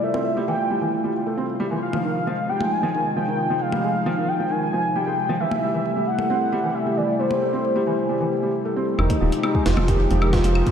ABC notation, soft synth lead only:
X:1
M:4/4
L:1/8
Q:1/4=134
K:Fm
V:1 name="Soft synth lead"
=e2 g2 z4 | f3 g a2 g2 | f3 g a2 g2 | =e3 _g3 e =d |
c6 z2 | E2 E F G2 F2 |]